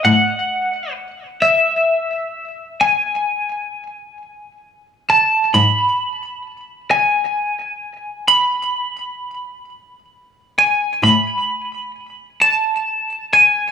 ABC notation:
X:1
M:6/8
L:1/8
Q:3/8=44
K:G#phr
V:1 name="Clean electric guitar"
f2 z e3 | g4- g a | b2 z g3 | b4- b g |
b2 z a2 g |]
V:2 name="Cello" clef=bass
A,,6- | A,,6 | G,,6- | G,,6 |
A,,6 |]